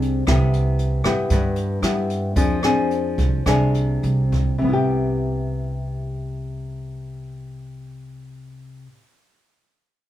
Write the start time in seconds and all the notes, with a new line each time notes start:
Already playing: C2 C3 C4 D4 G#4
0.02 closed hi-hat
0.27 C2 C3 B3 E4 G4, kick, cross-stick, closed hi-hat
0.53 closed hi-hat
0.79 closed hi-hat
1.04 G2 B3 E4 G4, cross-stick, closed hi-hat
1.30 G2, kick, closed hi-hat
1.56 closed hi-hat
1.82 G2 B3 E4 G4, cross-stick, closed hi-hat
2.10 closed hi-hat
2.36 F2 F3 C4 D4 G#4, kick, closed hi-hat
2.63 C4 D4 G#4, cross-stick, closed hi-hat
2.91 closed hi-hat
3.18 C2, kick, closed hi-hat
3.46 C2 C3 C4 D4 G#4, kick, cross-stick, closed hi-hat
3.74 closed hi-hat
4.03 C2, closed hi-hat
4.32 kick, closed hi-hat
4.58 C2 C3
4.64 B3
4.69 E4
4.73 G4